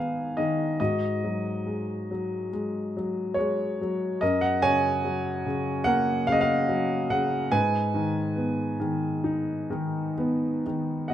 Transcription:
0.00 0.75 G#2 soft
0.00 0.38 D#3 soft
0.00 0.81 B3 soft
0.00 0.76 D#4 soft
0.00 0.76 B4 medium
0.00 0.33 F5 medium
0.00 0.81 G#5 medium
0.00 0.81 A#5 medium
0.37 0.79 D#3 soft
0.37 0.78 D#5 medium
0.80 4.18 G#2 medium
0.80 2.48 F#4 soft
0.80 2.48 D#5 medium
1.24 2.09 F#3 soft
1.67 2.51 G#3 soft
2.11 2.95 F#3 soft
2.53 3.37 G#3 soft
2.97 3.80 F#3 soft
3.34 4.17 C#5 medium
3.39 4.21 G#3 medium
3.81 4.22 F#3 soft
4.21 7.48 F#2 medium
4.21 5.82 A#4 medium
4.21 4.43 D#5 medium
4.41 4.64 F#5 medium
4.62 5.44 C#3 soft
4.62 6.23 C#5 medium
4.62 5.82 G#5 loud
5.04 6.65 F#3 soft
5.46 6.27 C#3 soft
5.84 7.48 A#3 medium
5.84 7.48 A#4 medium
5.84 6.28 F#5 loud
6.27 7.08 C#3 medium
6.27 6.34 F5 medium
6.32 6.40 D#5 medium
6.41 7.12 F5 medium
6.68 7.49 F#3 medium
7.10 7.51 C#3 medium
7.10 7.53 F#5 medium
7.52 11.07 G#2 medium
7.52 10.61 B4 medium
7.52 10.60 G#5 medium
7.94 8.78 D#3 medium
8.36 10.13 B3 soft
8.80 9.69 D#3 medium
9.24 11.07 D#4 medium
9.70 10.65 D#3 medium
10.18 11.09 B3 medium
10.66 11.10 D#3 soft
11.08 11.14 B2 soft
11.08 11.14 D#5 soft
11.08 11.14 F#5 medium

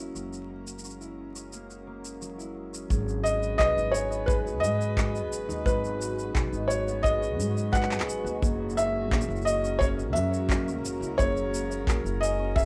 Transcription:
0.00 0.11 F#1 medium
0.00 0.13 F#3 medium
0.00 12.65 G#3 medium
0.00 0.48 A#3 medium
0.00 0.84 C#4 medium
0.00 2.91 C#4 medium
0.00 1.00 E4 medium
0.00 1.37 F#4 medium
0.00 2.91 F#4 medium
0.00 2.91 A#4 medium
0.15 2.87 F#1 medium
0.15 2.20 F#3 medium
0.15 shaker medium
0.33 shaker soft
0.49 1.52 A#3 medium
0.67 shaker medium
0.79 shaker soft
0.84 1.35 C#4 medium
0.84 shaker soft
0.90 shaker soft
1.00 2.38 E4 medium
1.00 shaker soft
1.35 2.72 C#4 medium
1.35 shaker medium
1.53 1.86 A#3 medium
1.53 shaker medium
1.70 4.13 F#4 medium
1.70 shaker soft
1.87 3.65 A#3 medium
2.05 shaker medium
2.21 2.89 F#3 medium
2.21 shaker medium
2.38 3.82 E4 medium
2.38 shaker soft
2.72 5.62 C#4 medium
2.72 shaker medium
2.90 3.59 G#1 medium
2.90 4.61 F#3 medium
2.90 3.24 G#4 medium
2.90 kick loud
2.90 shaker soft
3.04 12.65 C#4 medium
3.09 shaker soft
3.24 4.26 G#3 medium
3.24 3.56 D#5 medium
3.24 shaker medium
3.32 8.42 B4 medium
3.38 12.65 F#4 medium
3.43 shaker soft
3.58 3.74 B1 medium
3.58 4.10 B3 medium
3.58 3.92 B4 medium
3.58 3.94 D#5 loud
3.58 kick medium
3.58 clap loud
3.58 shaker soft
3.76 4.63 G#1 medium
3.76 5.47 D#4 medium
3.76 shaker soft
3.91 4.28 C#5 medium
3.91 4.14 G#5 medium
3.91 shaker medium
4.10 5.14 B3 medium
4.10 shaker soft
4.26 4.95 G#3 medium
4.26 4.61 G#4 medium
4.26 4.34 B4 medium
4.26 kick loud
4.26 shaker soft
4.45 6.89 F#4 medium
4.45 shaker soft
4.60 5.32 G#2 medium
4.60 5.64 F#3 medium
4.60 5.27 D#5 medium
4.64 shaker medium
4.81 shaker soft
4.96 5.99 G#3 loud
4.96 kick loud
4.96 clap loud
4.96 shaker soft
5.14 6.34 B3 medium
5.14 shaker soft
5.32 5.47 G#1 medium
5.32 shaker medium
5.48 5.64 D#2 medium
5.48 6.52 D#4 loud
5.48 shaker soft
5.65 6.35 G#1 medium
5.65 7.38 F#3 medium
5.65 6.73 B4 medium
5.65 kick loud
5.65 shaker soft
5.85 shaker soft
5.99 7.04 G#3 medium
5.99 6.33 F#4 medium
5.99 shaker medium
6.19 shaker soft
6.34 6.50 B1 medium
6.34 6.87 B3 medium
6.34 kick loud
6.34 clap medium
6.34 shaker soft
6.52 7.39 G#1 medium
6.52 8.25 D#4 medium
6.52 shaker soft
6.68 7.04 C#5 medium
6.68 shaker medium
6.87 7.90 B3 loud
6.87 shaker soft
7.03 7.73 G#3 medium
7.03 7.37 G#4 medium
7.03 7.75 D#5 loud
7.03 kick loud
7.03 shaker soft
7.22 9.66 F#4 medium
7.22 shaker soft
7.39 8.08 G#2 medium
7.39 8.41 F#3 medium
7.39 shaker medium
7.57 shaker soft
7.72 8.47 G#3 loud
7.72 8.05 B4 loud
7.72 8.21 F#5 loud
7.72 kick loud
7.72 clap soft
7.72 shaker soft
7.83 clap medium
7.90 8.83 B3 medium
7.90 clap medium
7.90 shaker soft
8.00 clap medium
8.08 8.22 G#1 medium
8.08 8.28 G#5 medium
8.08 shaker medium
8.24 8.39 D#2 medium
8.24 9.35 D#4 medium
8.24 shaker soft
8.42 9.11 F#1 medium
8.42 10.14 F#3 medium
8.42 8.75 G#4 medium
8.42 kick loud
8.42 shaker soft
8.70 shaker soft
8.77 9.80 A#3 medium
8.77 9.48 E5 loud
8.77 shaker medium
9.11 9.26 A#1 medium
9.11 9.63 C#4 medium
9.11 kick loud
9.11 clap loud
9.21 shaker soft
9.28 10.15 F#1 medium
9.28 11.02 E4 medium
9.28 shaker soft
9.36 shaker soft
9.42 9.81 D#5 medium
9.42 shaker soft
9.47 shaker medium
9.62 10.67 C#4 loud
9.62 12.65 A#4 medium
9.62 shaker soft
9.79 10.49 A#3 medium
9.79 9.87 C#5 loud
9.79 kick loud
9.79 shaker soft
9.98 12.42 F#4 medium
9.98 shaker soft
10.13 10.84 F#2 medium
10.13 11.17 F#3 medium
10.13 10.47 F#4 medium
10.13 10.79 E5 loud
10.13 shaker medium
10.34 shaker soft
10.49 11.52 A#3 loud
10.49 kick loud
10.49 clap loud
10.49 shaker soft
10.67 11.87 C#4 loud
10.67 shaker soft
10.84 10.98 F#1 medium
10.84 shaker medium
11.01 11.15 C#2 medium
11.01 12.05 E4 loud
11.01 shaker soft
11.18 11.87 F#1 medium
11.18 12.65 F#3 medium
11.18 11.51 G#4 medium
11.18 12.25 C#5 loud
11.18 kick loud
11.18 shaker soft
11.37 shaker soft
11.53 12.56 A#3 medium
11.53 shaker medium
11.72 shaker soft
11.87 12.02 A#1 medium
11.87 12.39 C#4 medium
11.87 12.20 A#4 medium
11.87 kick loud
11.87 clap medium
11.87 shaker soft
12.04 12.65 F#1 medium
12.04 12.65 E4 medium
12.04 shaker soft
12.21 12.53 D#5 medium
12.21 12.41 G#5 medium
12.21 shaker medium
12.39 12.65 C#4 loud
12.56 12.65 A#3 medium
12.56 12.65 G#4 medium
12.56 12.65 E5 loud
12.56 kick loud
12.56 shaker soft

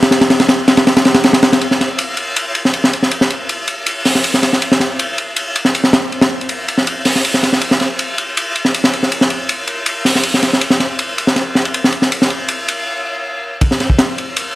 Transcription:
0.02 snare loud
0.02 ride medium
0.11 snare loud
0.11 ride medium
0.21 snare loud
0.21 ride medium
0.30 snare loud
0.30 ride medium
0.40 snare loud
0.40 ride medium
0.49 snare loud
0.49 ride medium
0.68 snare loud
0.68 ride medium
0.77 snare loud
0.77 ride medium
0.87 snare loud
0.87 ride medium
0.97 snare loud
0.97 ride medium
1.05 snare loud
1.05 ride medium
1.14 snare loud
1.14 ride medium
1.24 snare loud
1.24 ride medium
1.33 snare loud
1.33 ride medium
1.43 snare loud
1.43 ride medium
1.53 snare medium
1.53 ride medium
1.61 ride medium
1.71 snare soft
1.81 snare soft
1.81 ride medium
1.98 ride medium
2.17 ride medium
2.36 ride medium
2.55 ride medium
2.65 snare soft
2.73 ride medium
2.84 snare medium
2.93 ride medium
3.03 snare soft
3.11 ride medium
3.21 snare soft
3.30 ride medium
3.49 ride medium
3.67 ride medium
3.86 ride medium
4.05 snare soft
4.05 open hi-hat medium
4.15 snare soft
4.24 ride medium
4.34 snare soft
4.43 snare soft
4.43 ride medium
4.53 snare soft
4.62 ride medium
4.72 snare medium
4.80 snare soft
4.80 ride medium
4.99 ride medium
5.18 ride medium
5.36 ride medium
5.56 ride medium
5.65 snare soft
5.75 ride medium
5.84 snare soft
5.93 snare loud
5.93 ride medium
6.12 ride medium
6.21 snare medium
6.21 ride medium
6.41 ride medium
6.49 ride medium
6.68 ride medium
6.78 snare soft
6.87 ride medium
7.05 snare soft
7.05 open hi-hat medium
7.16 snare soft
7.25 ride medium
7.34 snare soft
7.43 snare soft
7.43 ride medium
7.53 snare soft
7.61 ride medium
7.71 snare soft
7.80 snare soft
7.80 ride medium
7.99 ride medium
8.18 ride medium
8.37 ride medium
8.55 ride medium
8.65 snare soft
8.74 ride medium
8.84 snare medium
8.93 ride medium
9.03 snare soft
9.12 ride medium
9.21 snare soft
9.30 ride medium
9.49 ride medium
9.67 ride medium
9.86 ride medium
10.05 snare soft
10.05 open hi-hat medium
10.15 snare soft
10.23 ride medium
10.34 snare soft
10.43 snare soft
10.43 ride medium
10.53 snare soft
10.61 ride medium
10.70 snare medium
10.80 snare soft
10.80 ride medium
10.99 ride medium
11.18 ride medium
11.27 snare soft
11.36 snare soft
11.36 ride medium
11.55 snare soft
11.65 ride medium
11.74 ride medium
11.84 snare medium
11.92 ride medium
12.02 snare soft
12.12 ride medium
12.22 snare medium
12.30 ride medium
12.48 ride medium
12.68 ride medium
13.61 kick loud
13.61 ride medium
13.71 snare medium
13.80 snare soft
13.80 ride medium
13.90 kick medium
13.99 snare loud
13.99 ride medium
14.18 ride medium
14.36 ride medium

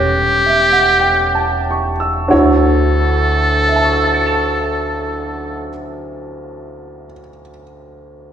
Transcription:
0.00 2.28 E1 medium
0.00 2.32 G3 soft
0.00 2.32 B3 soft
0.00 2.31 C#4 soft
0.00 2.28 E4 soft
0.00 1.86 G4 medium
0.00 2.32 G4 soft
0.00 2.33 A4 soft
0.00 2.29 C#5 soft
0.46 0.81 E5 soft
0.73 1.15 F#5 soft
1.00 1.61 G5 soft
1.35 1.90 A5 soft
1.71 2.09 C#6 soft
2.00 2.47 E6 soft
2.28 5.67 D2 medium
2.28 5.68 D3 soft
2.28 5.69 E4 soft
2.28 5.69 F#4 soft
2.28 5.70 C#5 medium
2.33 5.68 D2 medium
2.33 5.71 A4 medium
3.69 7.04 E5 soft
3.76 7.11 A5 soft
3.84 7.19 C#6 soft
3.93 7.28 E6 soft
4.04 7.39 A6 soft
4.14 7.49 C#7 soft
4.26 7.61 E7 soft

